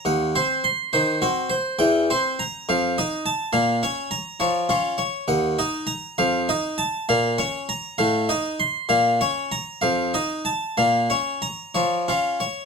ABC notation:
X:1
M:6/8
L:1/8
Q:3/8=67
K:Bbm
V:1 name="Harpsichord"
[E,,g] [Cc] c' [E,c] [CG] c | [=E,,=g] [Cc] b [F,,f] [_Ee] =a | [B,,f] [Dd] b [F,d] [DF] d | [E,,g] [Ee] b [F,,f] [Ee] =a |
[B,,f] [Dd] b [=A,,f] [Ee] c' | [B,,f] [Dd] b [F,,f] [Ee] =a | [B,,f] [Dd] b [F,d] [DF] d |]